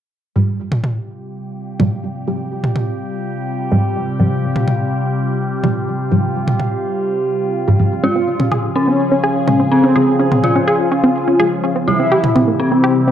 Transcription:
0.36 1.77 G#2 medium
0.36 8.00 C3 medium
0.36 1.77 F3 medium
0.36 8.00 G3 medium
0.36 1.77 G3 medium
0.36 11.84 F4 medium
0.36 8.00 G4 medium
0.72 mid tom medium
0.84 mid tom medium
1.80 2.25 G#2 medium
1.80 2.25 F3 medium
1.80 2.25 G3 medium
1.80 mid tom medium
2.28 3.69 G#2 medium
2.28 3.69 F3 medium
2.28 3.69 G3 medium
2.64 mid tom medium
2.76 mid tom medium
3.72 4.17 G#2 medium
3.72 4.17 F3 medium
3.72 4.17 G3 loud
4.20 5.61 G#2 medium
4.20 5.61 F3 medium
4.20 5.61 G3 medium
4.56 mid tom medium
4.68 mid tom medium
5.64 6.09 G#2 medium
5.64 6.09 F3 medium
5.64 6.09 G3 loud
5.64 mid tom medium
6.12 7.53 G#2 medium
6.12 7.53 F3 medium
6.12 7.53 G3 medium
6.48 mid tom medium
6.60 mid tom medium
7.68 7.77 G#2 medium
7.68 7.77 F3 medium
7.68 7.77 G3 loud
7.80 8.01 G#2 medium
7.80 8.01 F3 medium
7.80 8.01 G3 medium
8.03 9.45 C#3 medium
8.03 11.84 C#3 medium
8.03 9.45 F3 medium
8.03 11.84 F3 medium
8.03 9.45 G#3 medium
8.03 8.09 C#4 medium
8.03 8.66 F4 loud
8.03 8.66 F4 medium
8.03 11.84 G#4 medium
8.16 8.27 C4 medium
8.40 8.49 C#4 medium
8.40 mid tom medium
8.52 8.61 G#4 loud
8.52 mid tom medium
8.76 9.62 C#4 medium
8.76 8.81 C#4 medium
8.76 9.62 C#4 loud
8.88 8.99 C4 medium
9.12 9.21 C#4 medium
9.24 9.33 G#4 medium
9.47 9.93 C#3 medium
9.47 9.93 F3 medium
9.47 9.93 G#3 medium
9.47 9.53 C#4 medium
9.47 mid tom medium
9.60 9.71 C4 medium
9.72 10.34 C4 medium
9.84 9.93 C#4 medium
9.96 11.37 C#3 medium
9.96 11.37 F3 medium
9.96 11.37 G#3 medium
9.96 10.05 G#4 loud
10.20 10.25 C#4 medium
10.32 10.43 C4 medium
10.32 mid tom medium
10.44 11.78 F4 medium
10.44 11.78 F4 loud
10.44 mid tom medium
10.56 10.65 C#4 medium
10.68 10.77 G#4 loud
10.92 10.97 C#4 medium
11.04 11.15 C4 medium
11.28 11.37 C#4 medium
11.40 11.85 C#3 medium
11.40 11.85 F3 medium
11.40 11.85 G#3 loud
11.40 11.49 G#4 loud
11.64 11.69 C#4 medium
11.76 11.87 C4 medium
11.87 13.12 C3 medium
11.87 13.12 E3 medium
11.87 13.12 G3 medium
11.87 12.50 E4 medium
11.87 13.12 E4 medium
11.87 12.50 E4 loud
11.87 13.12 G4 medium
12.00 12.09 C4 medium
12.12 12.21 G4 loud
12.24 mid tom medium
12.36 12.41 C4 medium
12.36 mid tom medium
12.48 12.59 A#3 medium
12.60 13.12 C4 medium
12.72 12.81 C4 medium
12.84 12.93 G4 loud
13.08 13.12 C4 medium

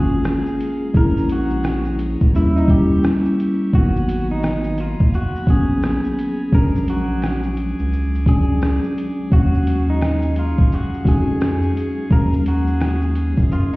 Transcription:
0.00 0.43 G#1 medium
0.00 0.93 G#3 medium
0.00 0.94 A#3 medium
0.00 0.96 C#4 medium
0.00 0.71 F4 medium
0.00 0.91 G#4 medium
0.00 2.30 G#4 medium
0.00 0.90 F5 medium
0.00 0.97 F5 medium
0.00 2.30 A#5 medium
0.24 finger snap medium
0.24 cross-stick loud
0.24 shaker medium
0.46 shaker soft
0.60 closed hi-hat medium
0.60 shaker soft
0.93 2.16 A#1 loud
0.93 1.98 G#3 medium
0.93 1.99 A#3 medium
0.93 1.03 C4 soft
0.93 2.00 E4 medium
0.93 1.27 A#4 loud
0.93 2.32 C#5 medium
0.93 kick loud
0.93 shaker medium
1.02 2.02 C#4 medium
1.17 shaker medium
1.29 1.83 F#4 medium
1.29 closed hi-hat medium
1.29 shaker medium
1.50 shaker medium
1.64 finger snap medium
1.64 cross-stick loud
1.64 shaker medium
1.85 shaker soft
1.99 closed hi-hat medium
1.99 shaker soft
2.20 2.34 C#2 medium
2.20 kick medium
2.20 shaker soft
2.33 3.01 D#2 loud
2.33 2.63 G3 medium
2.33 2.63 A#3 medium
2.33 2.64 C#4 medium
2.33 2.54 E4 medium
2.33 2.65 E4 medium
2.33 3.72 G4 medium
2.33 3.72 E5 medium
2.33 3.72 C#6 medium
2.33 shaker medium
2.56 2.68 D#4 medium
2.56 shaker soft
2.68 3.48 G3 medium
2.68 3.49 A#3 medium
2.68 3.49 C#4 medium
2.68 3.50 E4 medium
2.68 3.01 G4 medium
2.68 kick medium
2.68 closed hi-hat medium
2.68 shaker soft
3.03 finger snap medium
3.03 cross-stick loud
3.03 shaker medium
3.25 shaker soft
3.40 closed hi-hat medium
3.40 shaker soft
3.73 4.96 G#1 loud
3.73 4.77 F#3 medium
3.73 4.78 A#3 medium
3.73 4.79 B3 medium
3.73 4.79 D#4 medium
3.73 4.27 F#4 loud
3.73 13.76 G#5 medium
3.73 6.50 A#5 medium
3.73 6.50 B5 medium
3.73 kick loud
3.73 shaker medium
3.96 shaker medium
4.09 closed hi-hat medium
4.09 shaker medium
4.31 4.80 D#4 medium
4.43 finger snap medium
4.43 cross-stick loud
4.43 shaker medium
4.64 shaker medium
4.78 5.10 F4 medium
4.78 closed hi-hat soft
4.78 shaker soft
5.00 5.13 F#1 medium
5.00 kick loud
5.00 shaker soft
5.14 5.46 F#4 medium
5.14 shaker medium
5.36 shaker soft
5.47 6.01 A#1 medium
5.47 6.27 F#3 medium
5.47 6.28 A#3 medium
5.47 6.28 B3 medium
5.47 6.29 C#4 medium
5.47 6.50 G#4 medium
5.47 kick medium
5.47 closed hi-hat medium
5.47 shaker soft
5.82 finger snap medium
5.82 cross-stick loud
5.82 shaker medium
6.04 shaker soft
6.19 closed hi-hat medium
6.19 shaker soft
6.51 7.75 A#1 loud
6.51 7.56 F#3 medium
6.51 7.57 G#3 medium
6.51 7.58 C#4 medium
6.51 7.58 D4 medium
6.51 13.76 G#4 medium
6.51 6.85 A#4 loud
6.51 9.29 D6 medium
6.51 kick loud
6.51 shaker medium
6.75 shaker medium
6.88 7.41 F#4 medium
6.88 closed hi-hat medium
6.88 shaker medium
7.22 finger snap medium
7.22 cross-stick loud
7.22 shaker medium
7.43 shaker medium
7.57 closed hi-hat medium
7.57 shaker soft
7.79 8.79 C#2 medium
7.79 shaker soft
7.93 shaker medium
8.15 shaker soft
8.26 9.06 F#3 medium
8.26 9.07 G#3 medium
8.26 9.08 C#4 medium
8.26 9.08 D4 medium
8.26 8.80 G#4 medium
8.26 kick loud
8.26 closed hi-hat medium
8.26 shaker soft
8.61 finger snap medium
8.61 cross-stick loud
8.61 shaker medium
8.83 shaker soft
8.98 closed hi-hat medium
8.98 shaker soft
9.30 10.54 D#2 loud
9.30 10.35 F#3 medium
9.30 10.36 G#3 medium
9.30 10.37 C#4 medium
9.30 9.85 F#4 loud
9.30 13.76 F5 medium
9.30 10.37 F5 medium
9.30 12.08 C#6 medium
9.30 kick loud
9.30 shaker medium
9.54 shaker medium
9.67 closed hi-hat medium
9.67 shaker medium
9.90 10.34 D#4 medium
10.01 finger snap medium
10.01 cross-stick loud
10.01 shaker medium
10.22 shaker medium
10.36 10.74 F4 medium
10.36 closed hi-hat medium
10.36 shaker soft
10.58 10.71 C#2 medium
10.58 kick medium
10.58 shaker soft
10.72 11.04 F#4 medium
10.72 shaker medium
10.94 shaker soft
11.05 11.59 F2 loud
11.05 11.86 G#3 medium
11.05 11.87 C#4 medium
11.05 11.87 D#4 medium
11.05 11.85 F#4 medium
11.05 12.08 G#4 medium
11.05 kick loud
11.05 closed hi-hat medium
11.05 shaker soft
11.40 finger snap medium
11.40 cross-stick loud
11.40 shaker medium
11.62 shaker soft
11.77 closed hi-hat medium
11.77 shaker soft
12.10 13.33 D#2 loud
12.10 13.15 F#3 medium
12.10 13.15 G#3 medium
12.10 13.16 C#4 medium
12.10 12.43 A#4 loud
12.10 13.16 F5 medium
12.10 13.76 D#6 medium
12.10 kick loud
12.10 shaker medium
12.33 shaker medium
12.46 12.99 F#4 medium
12.46 closed hi-hat medium
12.46 shaker medium
12.67 shaker medium
12.80 finger snap medium
12.80 cross-stick loud
12.80 shaker medium
13.01 shaker medium
13.15 closed hi-hat medium
13.15 shaker soft
13.37 13.76 F#2 loud
13.37 kick medium
13.37 shaker soft
13.51 13.71 F4 medium
13.51 shaker medium
13.73 shaker soft

